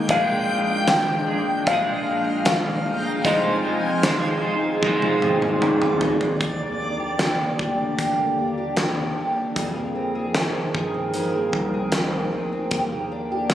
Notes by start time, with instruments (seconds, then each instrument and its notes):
Already playing: ambient pad G#3 A#3, twelve-string acoustic guitar A#3 D#4 G#4, clean electric guitar G#4
0.08 analog synth bass A#1, clean electric guitar A#2 F3 G#3 D4 G#4, twelve-string acoustic guitar A#2, ambient pad D4, felt piano F5, kick, closed hi-hat
0.48 twelve-string acoustic guitar G#3
0.88 analog synth bass A#1, twelve-string acoustic guitar D4, felt piano G5, snare, closed hi-hat, tambourine
1.26 twelve-string acoustic guitar G#3, clean electric guitar D4 G#4
1.30 clean electric guitar G#3
1.65 analog synth bass A#1, clean electric guitar A#2 F3 G#3, twelve-string acoustic guitar G#4, felt piano F5, kick, closed hi-hat
1.70 clean electric guitar D4 G#4
2.06 twelve-string acoustic guitar D4
2.45 twelve-string acoustic guitar G#3, felt piano F5, snare, closed hi-hat, tambourine
2.85 analog synth bass G1, twelve-string acoustic guitar G#4
3.24 analog synth bass F1, twelve-string acoustic guitar F2, clean electric guitar F3 G#3 D#4 F4 C5, ambient pad F3 C4 D#4 G#4, felt piano D#5, kick, closed hi-hat
3.65 twelve-string acoustic guitar G#3
4.03 analog synth bass F1, clean electric guitar G#3 D#4 F4, twelve-string acoustic guitar C4, snare, closed hi-hat, tambourine
4.07 clean electric guitar C5
4.42 twelve-string acoustic guitar G#3, clean electric guitar F4 C5
4.46 clean electric guitar D#4
4.81 clean electric guitar F3 G#3 D#4, twelve-string acoustic guitar G#4, kick, high tom
4.86 clean electric guitar F4 C5
5.02 high tom
5.22 analog synth bass G#1, twelve-string acoustic guitar C4, mid tom
5.42 mid tom
5.62 twelve-string acoustic guitar G#3, mid tom
5.82 mid tom
6.01 analog synth bass D2, twelve-string acoustic guitar G#4, floor tom
6.21 floor tom
6.41 analog synth bass D#2, ambient pad D3 A#3 D4 G4, twelve-string acoustic guitar G4, kick, closed hi-hat
6.60 twelve-string acoustic guitar A#3
6.80 twelve-string acoustic guitar D4
6.99 twelve-string acoustic guitar G4
7.19 twelve-string acoustic guitar G3, snare, closed hi-hat
7.39 twelve-string acoustic guitar D4
7.59 analog synth bass D2, twelve-string acoustic guitar G4, kick
7.78 twelve-string acoustic guitar D4
7.99 twelve-string acoustic guitar G4, kick, closed hi-hat
8.18 twelve-string acoustic guitar A#3
8.38 analog synth bass D#2, twelve-string acoustic guitar D4
8.58 twelve-string acoustic guitar G4
8.77 twelve-string acoustic guitar G3, snare, closed hi-hat
8.97 twelve-string acoustic guitar D4
9.17 twelve-string acoustic guitar G4
9.37 twelve-string acoustic guitar D4
9.56 twelve-string acoustic guitar F2 G#4, analog synth bass F2, ambient pad F3 D#4 G#4 A#4 G5, kick, closed hi-hat
9.75 twelve-string acoustic guitar A#3
9.95 twelve-string acoustic guitar C4
10.15 twelve-string acoustic guitar G#4
10.35 twelve-string acoustic guitar D#3, snare, closed hi-hat
10.55 twelve-string acoustic guitar C4
10.75 analog synth bass G2, twelve-string acoustic guitar G#4, kick
10.94 twelve-string acoustic guitar C4
11.14 twelve-string acoustic guitar F2 G#4, closed hi-hat
11.34 twelve-string acoustic guitar A#3
11.53 analog synth bass C2, twelve-string acoustic guitar C4, kick
11.74 twelve-string acoustic guitar G#4
11.92 snare, closed hi-hat
12.13 twelve-string acoustic guitar C4
12.32 analog synth bass D2, twelve-string acoustic guitar G#4
12.53 twelve-string acoustic guitar C4
12.71 analog synth bass D#2, ambient pad D3 A#3 D4, twelve-string acoustic guitar G4, kick, closed hi-hat
12.92 twelve-string acoustic guitar A#3
13.12 twelve-string acoustic guitar D4
13.32 twelve-string acoustic guitar G4
13.50 twelve-string acoustic guitar G3, snare, closed hi-hat